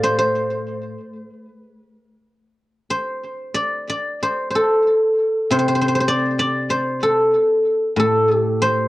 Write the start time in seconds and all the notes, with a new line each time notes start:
Already playing: A2 G4 A4 D5 F5
0.03 C5
0.19 C5
2.90 C5
3.54 D5
3.89 D5
4.23 C5
4.50 C5
4.55 A4
5.50 C3 C5
5.59 C5
5.68 C5
5.75 C5
5.81 C5
5.88 C5
5.95 C5
6.00 C5
6.08 D5
6.39 D5
6.70 C5
7.03 A4
7.96 A2 A4
8.36 G4
8.62 C5